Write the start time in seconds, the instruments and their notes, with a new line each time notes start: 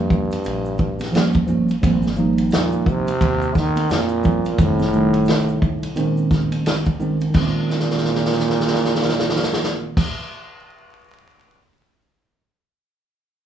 Already playing: upright bass F2, trombone G2, tine electric piano F3 G3 A#3 C#4
0.10 kick, low conga, maracas
0.31 ride, maracas
0.44 upright bass A#1, ride, high conga, maracas
0.65 maracas
0.78 kick, low conga, maracas
0.99 snare, ride, high conga, maracas
1.12 upright bass D#2, tine electric piano F3 G3 A#3 C#4, snare, hi-hat pedal, ride, maracas
1.33 kick, maracas
1.47 upright bass G1, tine electric piano F3 G3 A#3 C#4, low conga, maracas
1.69 ride, maracas
1.82 upright bass G#1, tine electric piano F3 G3 A#3 C4, kick, ride, maracas
2.03 snare, high conga, maracas
2.16 tine electric piano F3 G3 A#3 D#4, high conga, maracas
2.38 ride, maracas
2.50 upright bass D#2, snare, hi-hat pedal, ride, maracas
2.55 trombone A#2
2.72 maracas
2.86 trombone C3, kick, low conga, maracas
3.07 ride, maracas
3.21 upright bass D#2, kick, ride, high conga, maracas
3.42 maracas
3.55 trombone D#3, kick, snare, low conga, maracas
3.76 ride, high conga, maracas
3.90 upright bass F2, trombone A#2, snare, hi-hat pedal, ride, maracas
4.09 maracas
4.24 upright bass G1, tine electric piano F3 G3 A#3 C4, kick, low conga, maracas
4.45 ride, maracas
4.58 upright bass F1, trombone A2, tine electric piano D#3 G3 A3 C4, kick, ride, maracas
4.79 snare, high conga, maracas
4.92 tine electric piano D#3 G3 A3 D#4, high conga, maracas
5.14 ride, maracas
5.26 upright bass C2, snare, hi-hat pedal, ride, maracas
5.48 maracas
5.62 kick, low conga, maracas
5.83 ride, maracas
5.96 upright bass A#1, tine electric piano D#3 G#3 C4 C#4, ride, high conga, maracas
6.17 maracas
6.31 kick, snare, low conga, maracas
6.52 ride, high conga, maracas
6.66 upright bass G#1, snare, hi-hat pedal, ride, maracas
6.86 kick, maracas
7.00 tine electric piano D#3 G#3 C4 C#4, low conga, maracas
7.21 ride, maracas
7.30 tine electric piano D#3, high conga
7.34 upright bass A#1, trombone A#2, tine electric piano G#3 C4, kick, crash
7.41 tine electric piano C#4
7.70 snare
7.80 snare
7.91 snare
7.98 snare
8.05 snare
8.15 snare
8.25 snare
8.32 snare
8.40 snare
8.50 snare
8.60 snare
8.68 snare
8.74 snare
8.85 snare
8.95 snare
9.02 snare
9.09 snare
9.19 snare
9.29 snare
9.36 snare
9.43 snare
9.53 snare
9.64 snare
9.97 kick, crash